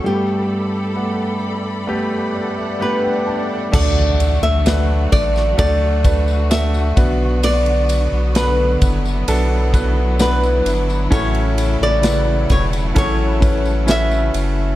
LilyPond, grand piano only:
\new Staff \with { instrumentName = "Grand piano" } { \time 4/4 \key d \major \tempo 4 = 65 << { g,4. r4 d''16 e''16 fis''16 g''16 a''8 | d4. r2 b,8~ | b,4 r2. | a,4. r2 r8 | } \\ { <a b g'>4 <a b fis''>4 <a b g'>4 <a b g'>4 | <a d' fis' a'>4 <a d' fis' b'>4 <a d' fis' a'>8 <a d' fis' b'>8 <a d' fis' a'>8 <b d' fis' b'>8~ | <b d' fis' b'>4 <b d' fis' a' b'>4 <b d' fis' a'>8 <b d' fis' b'>8 <b d' fis' b'>4 | <cis' e' fis' a'>4 <cis e' fis' b'>4 <cis' e' fis' a'>8 <cis' e' fis' b'>8 <cis' e' fis' b'>4 | } >> }